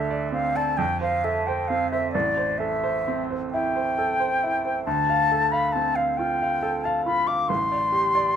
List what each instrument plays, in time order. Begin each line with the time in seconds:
Already playing: grand piano D2 A4 D5, flute E5
0.11 grand piano D5
0.32 grand piano C4, flute F5
0.55 grand piano D5, flute A5
0.77 grand piano F2, flute G5
1.01 grand piano C5, flute F5
1.24 grand piano A4, flute E5
1.47 grand piano C5, flute G5
1.68 grand piano C4, flute F5
1.91 grand piano C5, flute E5
2.12 grand piano A1, flute D5
2.37 grand piano C5
2.58 grand piano A4, flute E5
2.83 grand piano C5
3.08 grand piano C4
3.30 grand piano C5
3.52 grand piano E4, flute G5
3.76 grand piano C5
3.98 grand piano A4
4.20 grand piano C5
4.43 grand piano E4
4.65 grand piano C5
4.85 grand piano D2, flute A5
5.10 grand piano F5
5.32 grand piano A4
5.52 grand piano F5, flute B5
5.72 grand piano C4, flute A5
5.96 flute F5, grand piano F5
6.17 grand piano F4, flute G5
6.42 grand piano F5
6.63 grand piano A4
6.84 grand piano F5, flute A5
7.06 grand piano F4, flute B5
7.27 grand piano F5, flute D6
7.49 grand piano A1, flute C6
7.72 grand piano D5
7.92 grand piano G4
8.15 grand piano D5